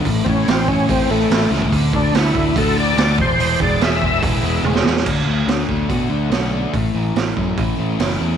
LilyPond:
<<
  \new Staff \with { instrumentName = "Tonewheel organ" } { \time 4/4 \key a \major \tempo 4 = 144 r8 <c' cis'>8 c'8 cis'8 c'8 a4 r8 | r8 d'8 e'4 a'8 d''4 c''8~ | c''8 d''8 e''4 r2 | r1 |
r1 | }
  \new Staff \with { instrumentName = "Overdriven electric guitar" } { \time 4/4 \key a \major a,8 a8 e'8 cis'8 e8 a8 e'8 cis'8 | d8 a8 fis'8 d'8 d8 a8 fis'8 e,8 | e,8 gis8 gis'8 b8 e8 gis8 gis'8 b8 | d8 a8 d8 a8 fis'8 d'8 fis'8 d'8 |
a,8 e8 e8 a8 e'8 cis'8 e'8 cis'8 | }
  \new Staff \with { instrumentName = "Overdriven electric guitar" } { \time 4/4 \key a \major a,8 a8 e8 a8 e'8 cis'8 a8 e8 | d8 a8 d8 a8 fis'8 d'8 a8 e8 | e8 gis8 e8 gis8 e'8 b8 gis8 e8 | d8 a8 a8 d'8 d8 a8 d8 d'8 |
a,8 e8 a8 cis'8 e8 a8 e8 cis'8 | }
  \new Staff \with { instrumentName = "Fingered electric bass" } { \clef bass \time 4/4 \key a \major a,,8 a,,8 a,,4 a,,8 a,,8 a,,8 cis,8 | d,8 d,8 d,8 d,8 d,4 d,8 e,,8 | e,,8 e,,8 e,,4 e,,8 e,,8 e,,8 e,8 | d,8 d,8 d,8 d,8 b,8 d,8 b,,4 |
a,,8 a,,8 a,,8 fis,8 a,,8 a,,8 fis,,8 e,8 | }
  \new DrumStaff \with { instrumentName = "Drums" } \drummode { \time 4/4 <hho bd>8 bd8 <hho sn>8 bd8 <hho bd>4 <hho sn>8 sn16 bd16 | <hho bd>8 bd8 <hho sn>8 bd8 <hho bd>4 <hho sn>8 bd8 | hho8 bd8 <hho sn>8 bd8 <hho bd>4 tommh16 sn16 sn16 sn16 | <cymc bd>4 <hho sn>8 bd8 <hho bd>4 <hho sn>4 |
<hho bd>4 <hho sn>8 bd8 <hho bd>4 <hho sn>4 | }
>>